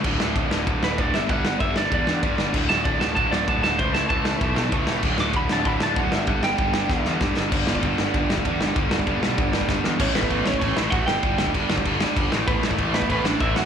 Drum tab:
CC |x---------------|----------------|x---------------|----------------|
RD |----x---x---x---|x---x---x---x---|----x---x---x---|x---x---x---x---|
SD |--o---o---o---o-|--o---o---o---o-|--o---o---o---o-|--o---o---o---o-|
BD |o---o---o---o---|o---o---o---o---|o---o---o---o---|o---o---o---o---|

CC |x---------------|----------------|x---------------|----------------|
RD |----x---x---x---|x---x-----------|----x---x---x---|x---x---x-------|
SD |--o---o---o---o-|--o---o-o-o-o-o-|--o---o---o---o-|--o---o---o-o-o-|
BD |o---o---o---o---|o---o---o---o---|o--oo---o--oo---|o--oo---o--oo---|

CC |x---x---x---x---|x---x---x---x---|x---x---x---x---|
RD |----------------|----------------|----------------|
SD |--o---o---o---o-|--o---o---o---o-|--o---o---o---o-|
BD |o--oo--oo---o---|o--oo--oo---o---|o--oo--oo---o---|